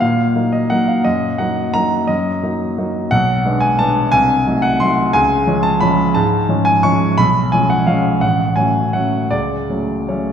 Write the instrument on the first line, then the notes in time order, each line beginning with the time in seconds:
grand piano
0.00 A#2 F5
0.35 F#3 A#3 D#4
0.52 D#5
0.70 F#3 A#3 D#4 F#5
0.88 F5
1.04 F#2 D#5
1.38 F#3 A#3 D#4 F#5
1.74 F#3 A#3 D#4 A#5
2.07 F#2 D#5
2.43 F#3 A#3 D#4
2.78 F#3 A#3 D#4
3.11 B1 F#5
3.45 G#3 B3 D4
3.60 G#5
3.79 G#3 B3 D4 A5
4.12 C2 G#5
4.47 F#3 A3 D#4
4.62 F#5
4.80 F#3 A3 D#4 C6
5.13 C#2 G#5
5.47 F3 G#3 C#4
5.63 A5
5.80 F3 G#3 C#4 B5
6.14 G#2 A5
6.49 F3 G#3 C#4
6.65 G#5
6.83 F3 G#3 C#4 C#6
7.18 B1 B5
7.52 F3 G#3 C#4 G#5
7.70 F#5
7.87 F3 G#3 C#4 F5
8.21 A1 F#5
8.56 F#3 A3 C#4 G#5
8.93 F#3 A3 C#4 F#5
9.31 C#2 D5
9.70 F#3 A3 C#4
10.09 F#3 A3 C#4 C#5